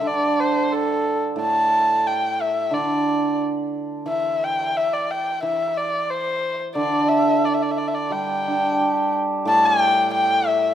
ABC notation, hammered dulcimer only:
X:1
M:2/4
L:1/8
Q:1/4=89
K:none
V:1 name="Hammered dulcimer" clef=bass
D,4 | A,,4 | D,4 | E,4 |
E,4 | D,4 | G, D G2 | A,,4 |]